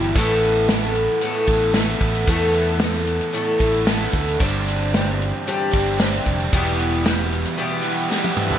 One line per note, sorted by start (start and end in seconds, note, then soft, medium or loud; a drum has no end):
0.00 0.12 G1 medium
0.00 0.13 E2 medium
0.00 0.14 B2 medium
0.00 0.17 E3 medium
0.00 0.16 G3 medium
0.00 0.18 E4 medium
0.00 0.17 G4 medium
0.00 closed hi-hat soft
0.15 1.07 A1 medium
0.15 0.69 A2 medium
0.15 0.69 E3 medium
0.15 0.69 A3 medium
0.15 0.70 B3 medium
0.15 0.70 A4 medium
0.15 kick loud
0.15 closed hi-hat medium
0.43 closed hi-hat medium
0.69 1.22 E3 medium
0.69 1.22 A3 medium
0.69 1.23 B3 medium
0.69 1.23 A4 medium
0.69 snare loud
0.69 closed hi-hat medium
0.82 snare soft
0.95 closed hi-hat medium
1.21 1.75 A2 medium
1.21 1.73 E3 medium
1.21 1.75 A3 medium
1.21 1.76 B3 medium
1.21 1.76 A4 medium
1.21 closed hi-hat medium
1.47 1.94 A1 medium
1.47 1.73 E3 medium
1.47 1.74 A3 medium
1.47 1.73 B3 medium
1.47 1.72 A4 medium
1.47 kick medium
1.47 closed hi-hat medium
1.51 1.72 A2 medium
1.73 2.25 A2 medium
1.73 2.27 E3 medium
1.73 2.27 A3 medium
1.73 2.28 B3 medium
1.73 snare loud
1.73 closed hi-hat medium
1.78 2.28 A4 medium
2.01 2.24 A1 medium
2.01 kick medium
2.01 closed hi-hat medium
2.15 closed hi-hat medium
2.28 3.19 E2 medium
2.28 2.81 A2 medium
2.28 2.79 E3 medium
2.28 2.81 A3 medium
2.28 2.81 B3 medium
2.28 2.82 A4 medium
2.28 kick loud
2.28 closed hi-hat medium
2.54 closed hi-hat medium
2.80 3.32 E3 medium
2.80 3.33 A3 medium
2.80 3.33 B3 medium
2.80 3.34 A4 medium
2.80 snare loud
2.80 closed hi-hat medium
2.94 snare soft
3.07 closed hi-hat medium
3.21 closed hi-hat medium
3.33 3.86 A2 medium
3.33 3.85 E3 medium
3.33 3.86 A3 medium
3.33 3.87 B3 medium
3.33 3.87 A4 medium
3.33 closed hi-hat medium
3.58 4.06 A1 medium
3.58 3.84 A2 medium
3.58 3.85 E3 medium
3.58 3.85 A3 medium
3.58 3.85 B3 medium
3.58 3.84 A4 medium
3.58 kick medium
3.58 closed hi-hat medium
3.85 4.37 A2 medium
3.85 4.40 E3 medium
3.85 4.40 A3 medium
3.85 4.40 B3 medium
3.85 4.40 A4 medium
3.85 snare loud
3.85 closed hi-hat medium
4.13 4.36 D2 medium
4.13 kick medium
4.13 closed hi-hat medium
4.28 closed hi-hat medium
4.39 5.31 G1 medium
4.39 4.93 G2 medium
4.39 4.93 D3 medium
4.39 4.92 G3 medium
4.39 4.93 C4 medium
4.39 4.93 D4 medium
4.39 4.95 G4 medium
4.39 kick loud
4.39 closed hi-hat medium
4.68 closed hi-hat medium
4.93 5.47 G3 medium
4.93 5.46 C4 medium
4.93 5.46 D4 medium
4.93 5.48 G4 medium
4.93 snare loud
4.93 closed hi-hat medium
5.22 closed hi-hat medium
5.47 5.99 G2 medium
5.47 5.99 D3 medium
5.47 5.99 G3 medium
5.47 5.99 C4 medium
5.47 6.00 D4 medium
5.47 6.02 G4 medium
5.47 closed hi-hat medium
5.72 6.19 G1 medium
5.72 5.97 G2 medium
5.72 5.98 D3 medium
5.72 6.00 G3 medium
5.72 5.98 C4 medium
5.72 5.97 D4 medium
5.72 6.02 G4 medium
5.72 kick medium
5.72 closed hi-hat medium
5.98 6.50 G2 medium
5.98 6.51 D3 medium
5.98 6.53 G3 medium
5.98 6.53 C4 medium
5.98 6.53 D4 medium
5.98 snare loud
5.98 closed hi-hat medium
6.03 6.54 G4 medium
6.26 6.49 F1 medium
6.26 kick medium
6.26 closed hi-hat medium
6.40 closed hi-hat medium
6.52 7.44 E1 medium
6.52 7.05 E2 medium
6.52 7.05 B2 medium
6.52 7.03 E3 medium
6.52 7.04 G3 medium
6.52 7.05 B3 medium
6.52 7.06 G4 medium
6.52 kick loud
6.52 closed hi-hat medium
6.80 closed hi-hat medium
7.04 7.57 E3 medium
7.04 7.57 G3 medium
7.04 7.58 B3 medium
7.04 7.58 G4 medium
7.04 snare loud
7.04 closed hi-hat medium
7.33 closed hi-hat medium
7.45 closed hi-hat medium
7.57 8.11 E2 medium
7.57 8.11 B2 medium
7.57 8.08 E3 medium
7.57 8.09 G3 medium
7.57 8.11 B3 medium
7.57 8.12 G4 medium
7.82 8.08 E2 medium
7.82 8.09 B2 medium
7.82 8.09 E3 medium
7.82 8.09 G3 medium
7.82 8.09 B3 medium
7.82 8.08 G4 medium
8.09 8.59 E2 medium
8.09 8.59 B2 medium
8.09 8.59 E3 medium
8.09 8.59 G3 medium
8.09 8.59 B3 medium
8.09 8.59 G4 medium
8.09 snare medium
8.24 high tom medium
8.32 8.54 A3 medium
8.32 8.56 B3 medium
8.37 8.57 C4 medium
8.37 mid tom medium
8.41 8.59 D4 medium
8.41 8.59 E4 medium
8.46 8.59 F4 medium
8.46 8.59 G4 medium
8.51 8.59 A4 medium
8.51 floor tom medium
8.55 8.59 B4 medium